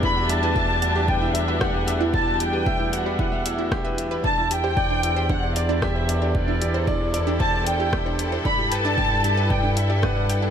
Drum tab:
HH |-x-x-x-x|-x-x-x-x|-x-x-x-x|-x-x-x-x|
SD |------r-|------r-|------r-|------r-|
BD |o-o-o-o-|o-o-o-o-|o-o-o-o-|o-o-o-o-|

HH |-x-x-x-x|
SD |------r-|
BD |o-o-o-o-|